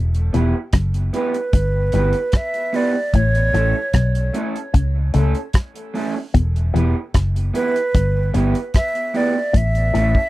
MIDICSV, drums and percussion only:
0, 0, Header, 1, 2, 480
1, 0, Start_track
1, 0, Tempo, 800000
1, 1882, Time_signature, 4, 2, 24, 8
1, 6176, End_track
2, 0, Start_track
2, 0, Title_t, "Drums"
2, 87, Note_on_c, 9, 42, 50
2, 147, Note_off_c, 9, 42, 0
2, 204, Note_on_c, 9, 42, 79
2, 264, Note_off_c, 9, 42, 0
2, 436, Note_on_c, 9, 42, 95
2, 439, Note_on_c, 9, 36, 101
2, 442, Note_on_c, 9, 37, 99
2, 496, Note_off_c, 9, 42, 0
2, 499, Note_off_c, 9, 36, 0
2, 502, Note_off_c, 9, 37, 0
2, 565, Note_on_c, 9, 42, 55
2, 625, Note_off_c, 9, 42, 0
2, 682, Note_on_c, 9, 42, 59
2, 742, Note_off_c, 9, 42, 0
2, 806, Note_on_c, 9, 42, 54
2, 866, Note_off_c, 9, 42, 0
2, 918, Note_on_c, 9, 42, 90
2, 920, Note_on_c, 9, 36, 110
2, 978, Note_off_c, 9, 42, 0
2, 980, Note_off_c, 9, 36, 0
2, 1153, Note_on_c, 9, 42, 80
2, 1213, Note_off_c, 9, 42, 0
2, 1276, Note_on_c, 9, 42, 54
2, 1336, Note_off_c, 9, 42, 0
2, 1392, Note_on_c, 9, 42, 73
2, 1400, Note_on_c, 9, 36, 103
2, 1402, Note_on_c, 9, 37, 110
2, 1452, Note_off_c, 9, 42, 0
2, 1460, Note_off_c, 9, 36, 0
2, 1462, Note_off_c, 9, 37, 0
2, 1524, Note_on_c, 9, 42, 48
2, 1584, Note_off_c, 9, 42, 0
2, 1643, Note_on_c, 9, 46, 55
2, 1703, Note_off_c, 9, 46, 0
2, 1882, Note_on_c, 9, 36, 102
2, 1882, Note_on_c, 9, 42, 82
2, 1942, Note_off_c, 9, 36, 0
2, 1942, Note_off_c, 9, 42, 0
2, 2009, Note_on_c, 9, 42, 52
2, 2069, Note_off_c, 9, 42, 0
2, 2127, Note_on_c, 9, 42, 74
2, 2187, Note_off_c, 9, 42, 0
2, 2361, Note_on_c, 9, 42, 93
2, 2363, Note_on_c, 9, 36, 101
2, 2367, Note_on_c, 9, 37, 95
2, 2421, Note_off_c, 9, 42, 0
2, 2423, Note_off_c, 9, 36, 0
2, 2427, Note_off_c, 9, 37, 0
2, 2490, Note_on_c, 9, 42, 59
2, 2550, Note_off_c, 9, 42, 0
2, 2606, Note_on_c, 9, 42, 68
2, 2666, Note_off_c, 9, 42, 0
2, 2734, Note_on_c, 9, 42, 56
2, 2794, Note_off_c, 9, 42, 0
2, 2845, Note_on_c, 9, 36, 109
2, 2845, Note_on_c, 9, 42, 79
2, 2905, Note_off_c, 9, 36, 0
2, 2905, Note_off_c, 9, 42, 0
2, 3083, Note_on_c, 9, 42, 89
2, 3143, Note_off_c, 9, 42, 0
2, 3208, Note_on_c, 9, 42, 50
2, 3268, Note_off_c, 9, 42, 0
2, 3320, Note_on_c, 9, 42, 76
2, 3325, Note_on_c, 9, 36, 100
2, 3331, Note_on_c, 9, 37, 105
2, 3380, Note_off_c, 9, 42, 0
2, 3385, Note_off_c, 9, 36, 0
2, 3391, Note_off_c, 9, 37, 0
2, 3453, Note_on_c, 9, 42, 49
2, 3513, Note_off_c, 9, 42, 0
2, 3571, Note_on_c, 9, 46, 57
2, 3631, Note_off_c, 9, 46, 0
2, 3807, Note_on_c, 9, 36, 108
2, 3808, Note_on_c, 9, 42, 90
2, 3867, Note_off_c, 9, 36, 0
2, 3868, Note_off_c, 9, 42, 0
2, 3936, Note_on_c, 9, 42, 50
2, 3996, Note_off_c, 9, 42, 0
2, 4055, Note_on_c, 9, 42, 78
2, 4115, Note_off_c, 9, 42, 0
2, 4286, Note_on_c, 9, 42, 101
2, 4287, Note_on_c, 9, 36, 101
2, 4292, Note_on_c, 9, 37, 100
2, 4346, Note_off_c, 9, 42, 0
2, 4347, Note_off_c, 9, 36, 0
2, 4352, Note_off_c, 9, 37, 0
2, 4417, Note_on_c, 9, 42, 53
2, 4477, Note_off_c, 9, 42, 0
2, 4530, Note_on_c, 9, 42, 67
2, 4590, Note_off_c, 9, 42, 0
2, 4655, Note_on_c, 9, 42, 52
2, 4715, Note_off_c, 9, 42, 0
2, 4767, Note_on_c, 9, 42, 91
2, 4768, Note_on_c, 9, 36, 109
2, 4827, Note_off_c, 9, 42, 0
2, 4828, Note_off_c, 9, 36, 0
2, 5006, Note_on_c, 9, 42, 88
2, 5066, Note_off_c, 9, 42, 0
2, 5130, Note_on_c, 9, 42, 52
2, 5190, Note_off_c, 9, 42, 0
2, 5243, Note_on_c, 9, 42, 72
2, 5247, Note_on_c, 9, 36, 96
2, 5254, Note_on_c, 9, 37, 97
2, 5303, Note_off_c, 9, 42, 0
2, 5307, Note_off_c, 9, 36, 0
2, 5314, Note_off_c, 9, 37, 0
2, 5371, Note_on_c, 9, 42, 46
2, 5431, Note_off_c, 9, 42, 0
2, 5486, Note_on_c, 9, 46, 51
2, 5546, Note_off_c, 9, 46, 0
2, 5725, Note_on_c, 9, 36, 106
2, 5726, Note_on_c, 9, 42, 82
2, 5785, Note_off_c, 9, 36, 0
2, 5786, Note_off_c, 9, 42, 0
2, 5850, Note_on_c, 9, 42, 49
2, 5910, Note_off_c, 9, 42, 0
2, 5970, Note_on_c, 9, 42, 84
2, 6030, Note_off_c, 9, 42, 0
2, 6089, Note_on_c, 9, 36, 78
2, 6149, Note_off_c, 9, 36, 0
2, 6176, End_track
0, 0, End_of_file